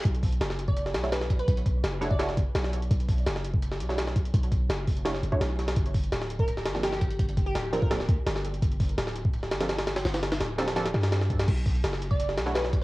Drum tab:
CC |----------------|----------------|----------------|----------------|
HH |xxoxx-x-x-x-x-xx|xxx-x-x-x-x-x-xx|xxoxx-x-x-x-x-xx|xxx-x-oxx-x-x-xx|
SD |----oo---ooooo--|----o-o-oo--oo--|----oo---o-ooo--|----o---oo--o-oo|
BD |o-o----o------o-|o-o----o--o-----|o-o----o------o-|o-o---o----o----|

CC |----------------|----------------|----------------|----------------|
HH |xxoxx-x-x-x-x-xx|xxx-x-x-x-x-x-xx|xxoxx-x-x-xxxxxx|xxxxx-xxxxxxx-xx|
SD |----oo---ooooo--|----o-o-oo--oo--|----oo---ooooooo|ooooo-oooooooo-o|
BD |o-o----o------o-|o-o----o--o-----|o-o----o--------|--------------o-|

CC |x---------------|
HH |xxoxx-x-x-x-x-x-|
SD |----oo---ooooo--|
BD |o-o----o------o-|